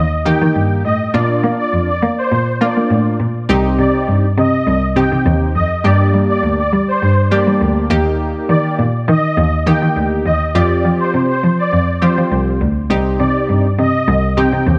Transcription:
Already playing: D#2
0.25 D#3 A#3 D#4 G4 G5
0.41 D#3
0.55 G2
0.85 A2 D#5
1.14 A#2 A#3 D4 F4 D5
1.43 A#3
1.59 D5
1.73 F2
1.88 D5
2.02 A#3
2.18 C5
2.32 A#2
2.61 A#3 D4 F4 D5
2.77 A#3
2.90 A2
3.20 A#2
3.49 C2 C4 D#4 G4
3.78 C3 D5
4.08 G2
4.37 C3 D#5
4.67 C2
4.96 C3 C4 D#4 G4 G5
5.12 C3
5.26 D#2
5.55 F2 D#5
5.84 G2 A#3 D4 G4 D5
6.14 G3
6.29 D5
6.43 D2
6.59 D5
6.73 G3
6.88 C5
7.02 G2
7.31 G3 A#3 D4 G4 D5
7.47 G3
7.61 D2
7.90 D#2 A#3 D#4 G4
8.49 D#3 D5
8.79 A#2
9.08 D#3 D#5
9.37 D#2
9.66 D#3 A#3 D#4 G4 G5
9.82 D#3
9.96 D2
10.26 D#2 D#5
10.55 F2 C4 F4 G4 D5
10.84 F3
11.00 C5
11.14 C3
11.29 C5
11.43 F3
11.59 D5
11.73 F2
12.02 F3 C4 F4 G4 C5
12.18 F3
12.31 C2
12.61 D2
12.90 C2 C4 D#4 G4
13.19 C3 D5
13.49 G2
13.78 C3 D#5
14.08 C2
14.37 C3 C4 D#4 G4 G5
14.53 C3
14.67 D#2

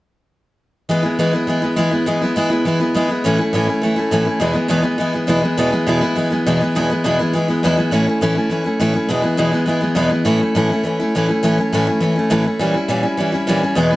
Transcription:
0.89 E3 G#3 B3 E4
1.03 G#3 B3 E4
1.19 E3 G#3 B3 E4
1.33 G#3 B3 E4
1.47 E3 G#3 B3 E4
1.62 G#3 B3 E4
1.76 E3 G#3 B3 E4
1.91 G#3 B3 E4
2.06 E3 G#3 B3 E4
2.22 G#3 B3 E4
2.36 E3 G#3 B3 E4
2.50 G#3 B3 E4
2.65 E3 G#3 B3 E4
2.80 G#3 B3 E4
2.94 E3 G#3 B3 E4
3.09 G#3 B3 E4
3.24 A2 E3 A3 C#4 E4
3.38 A3 C#4 E4
3.53 A2 E3 A3 C#4 E4
3.67 A3 C#4 E4
3.81 E3 A3 C#4 E4
3.96 A3 C#4 E4
4.11 A2 E3 A3 C#4 E4
4.25 A3 C#4 E4
4.40 E2 B2 E3 G#3 B3 E4
4.53 E3 G#3 B3 E4
4.68 E2 B2 E3 G#3 B3 E4
4.82 E3 G#3 B3 E4
4.98 E3 G#3 B3 E4
5.13 E3 G#3 B3 E4
5.27 E2 B2 E3 G#3 B3 E4
5.42 E3 G#3 B3 E4
5.57 E2 B2 E3 G#3 B3 E4
5.71 E3 G#3 B3 E4
5.87 E2 B2 E3 G#3 B3 E4
6.01 E3 G#3 B3 E4
6.15 E3 G#3 B3 E4
6.30 E3 G#3 B3 E4
6.46 E2 B2 E3 G#3 B3 E4
6.60 E3 G#3 B3 E4
6.75 E2 B2 E3 G#3 B3 E4
6.90 E3 G#3 B3 E4
7.04 E2 B2 E3 G#3 B3 E4
7.19 E3 G#3 B3 E4
7.33 E3 G#3 B3 E4
7.48 E3 G#3 B3 E4
7.63 E2 B2 E3 G#3 B3 E4
7.77 E3 G#3 B3 E4
7.91 A2 E3 A3 C#4 E4
8.06 A3 C#4 E4
8.21 A2 E3 A3 C#4 E4
8.35 A3 C#4 E4
8.50 E3 A3 C#4 E4
8.64 A3 C#4 E4
8.80 A2 E3 A3 C#4 E4
8.94 A3 C#4 E4
9.09 E2 B2 E3 G#3 B3 E4
9.22 E3 G#3 B3 E4
9.37 E2 B2 E3 G#3 B3 E4
9.52 E3 G#3 B3 E4
9.66 E3 G#3 B3 E4
9.81 E3 G#3 B3 E4
9.95 E2 B2 E3 G#3 B3 E4
10.09 E3 G#3 B3 E4
10.25 A2 E3 A3 C#4 E4
10.40 A3 C#4 E4
10.55 A2 E3 A3 C#4 E4
10.69 A3 C#4 E4
10.84 E3 A3 C#4 E4
11.00 A3 C#4 E4
11.15 A2 E3 A3 C#4 E4
11.28 A3 C#4 E4
11.43 A2 E3 A3 C#4 E4
11.58 A3 C#4 E4
11.73 A2 E3 A3 C#4 E4
11.87 A3 C#4 E4
12.00 E3 A3 C#4 E4
12.16 A3 C#4 E4
12.30 A2 E3 A3 C#4 E4
12.44 A3 C#4 E4
12.59 A#2 E3 G3 C#4 E4
12.74 G3 C#4 E4
12.88 A#2 E3 G3 C#4 E4
13.03 G3 C#4 E4
13.17 E3 G3 C#4 E4
13.32 G3 C#4 E4
13.47 A#2 E3 G3 C#4 E4
13.62 G3 C#4 E4
13.75 E2 B2 E3 G#3 B3 E4
13.91 B3 E4

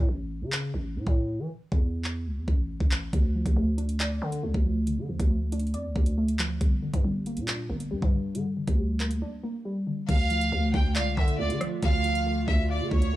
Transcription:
0.09 A1
0.41 C#3
0.52 clap
0.74 A1
0.96 A2
1.07 A2, kick
1.39 E3
1.72 E2, kick
2.04 clap
2.26 C#2
2.37 E2
2.48 A1, kick
2.80 A1, kick
2.91 clap
3.13 D2 D3, kick, closed hi-hat
3.35 F3
3.46 D2, kick, closed hi-hat
3.56 D2 A3
3.78 D4, closed hi-hat
3.89 closed hi-hat
4.00 D5, clap, closed hi-hat
4.22 D3 D4
4.32 closed hi-hat
4.43 C#2 A3
4.54 D2, kick
4.66 F3
4.87 D3, closed hi-hat
4.98 D3
5.09 D2 F3
5.20 D2, kick, closed hi-hat
5.31 A3
5.52 D4, closed hi-hat
5.59 closed hi-hat
5.67 closed hi-hat
5.74 F2 D5, closed hi-hat
5.85 D2
5.96 D2 D4, kick
6.06 closed hi-hat
6.18 A3
6.28 closed hi-hat
6.39 F3, clap, closed hi-hat
6.61 G1 G2, kick, closed hi-hat
6.83 D3
6.94 G2, kick, closed hi-hat
7.04 G1 G3
7.26 A#3, closed hi-hat
7.37 A#2, closed hi-hat
7.47 D4, clap, closed hi-hat
7.69 G1 A#3
7.80 closed hi-hat
7.91 G2 G3
8.02 G2, kick
8.13 D3
8.35 G2 D3, closed hi-hat
8.57 D3
8.67 D2, kick, closed hi-hat
8.78 G3
9.00 A#3, clap, closed hi-hat
9.11 closed hi-hat
9.22 D4
9.43 A#3
9.65 G3
9.87 D3
10.08 D2 D3 A3 F4 F5, kick, closed hi-hat, crash
10.30 F3, closed hi-hat
10.41 closed hi-hat
10.52 D2 A3
10.74 D2 D4 G5, kick
10.96 C#2 D5 F5, clap, closed hi-hat
11.17 D3 D4 E5, kick
11.28 closed hi-hat
11.39 C#2 A3 D5
11.50 D3, closed hi-hat
11.61 F3, cross-stick, closed hi-hat
11.83 D2 D3 F5, kick, closed hi-hat
12.04 F3, closed hi-hat
12.15 closed hi-hat
12.26 A3
12.47 D2 D4 E5, kick
12.70 D5 F5
12.81 D3
12.90 D2 D4 C#5, kick
13.02 closed hi-hat
13.13 A3

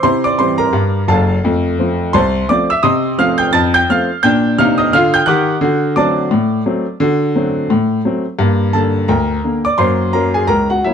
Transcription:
0.03 C3 E4 C5 C6
0.24 D5 D6
0.39 E3 G3 C4 C5 C6
0.58 A#4 A#5
0.73 G2
1.08 F#1 F#2 A4 F5 A5
1.44 F2 A3
1.79 F3 A3 C4
2.13 C2 C5 A5 C6
2.49 F3 A3 C4 D5 D6
2.70 E5 E6
2.83 C3 D#5 C6 D#6
3.18 F3 A3 C4 F5 F6
3.38 G5 G6
3.53 F2 A5 A6
3.74 G5 G6
3.90 F3 A3 C4 F5 F6
4.23 A#2 D4 G5 G6
4.58 C3 D#4 F5 F6
4.78 D#5 D#6
4.93 D3 F4 F5 F6
5.14 G5 G6
5.26 D#3 G4 F#5 D6 F#6
5.61 D3 F#4
5.96 F#3 A3 C4 D5 A5 D6
6.31 A2
6.66 F#3 A3 C4
7.00 D3 F#4
7.36 F#3 A3 C4
7.70 A2
8.05 F#3 A3 C4
8.39 G2 A#3
8.73 D3 A#3 A4 A5
9.08 D2 A#4 G5 A#5
9.44 D3 A#3
9.65 D5 D6
9.78 F#2 A#3 C5 C6
10.13 F#3 A#3 C#4 A#4 A#5
10.34 G#4 G#5
10.47 C#2 A#4 A#5
10.70 F#4 F#5
10.84 F#3 A#3 C#4 E4 E5

